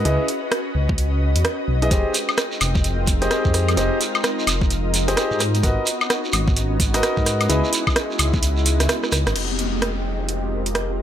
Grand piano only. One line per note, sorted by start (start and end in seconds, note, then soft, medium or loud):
0.05 0.26 E4 medium
0.05 0.26 G#4 medium
0.05 0.25 B4 medium
0.05 0.26 D#5 medium
1.82 1.90 E4 medium
1.82 1.90 G#4 medium
1.82 1.90 B4 medium
1.82 1.90 D#5 medium
1.91 2.12 G4 medium
1.91 2.12 G#4 medium
1.91 2.12 C5 medium
3.22 3.75 G4 medium
3.22 3.75 G#4 medium
3.22 3.75 C5 medium
3.22 3.75 D#5 medium
3.77 3.98 G4 medium
3.77 3.98 G#4 medium
3.77 3.98 C5 medium
3.77 3.98 D#5 medium
5.08 5.39 G4 medium
5.08 5.39 G#4 medium
5.08 5.39 C5 medium
5.08 5.39 D#5 medium
5.63 5.84 F#4 medium
5.63 5.84 A#4 medium
5.63 5.84 B4 medium
5.63 5.84 D#5 medium
6.94 7.47 F#4 medium
6.94 7.47 A#4 medium
6.94 7.47 B4 medium
6.94 7.47 D#5 loud
7.49 7.70 E4 medium
7.49 7.70 G#4 medium
7.49 7.70 B4 medium
7.49 7.70 D#5 medium